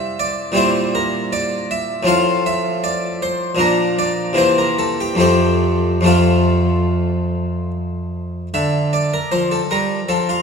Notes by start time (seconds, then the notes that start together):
Already playing: C3 G3 C4 E4 E5
0.19 D5
0.52 A#2 G3 C4 E4
0.57 C5
0.95 A#4
1.33 D5
1.71 E5
2.03 A2 F3 C4
2.07 F4 F5
2.46 E5
2.84 D5
3.22 C5
3.55 A#2 F3 A#3
3.59 D4 A#4
3.99 D5
4.33 C3 E3 A#3 C4
4.38 C5
4.58 A#4
4.79 A4
5.01 G4
5.15 F2 F3 A3
5.20 C4 G4
6.01 F2 F3 A3
6.05 C4 F4
8.54 D3 E5
8.93 D5
9.14 A#4
9.32 F3 C5
9.52 A4
9.71 G3 A#4
10.09 F3 A4
10.29 F4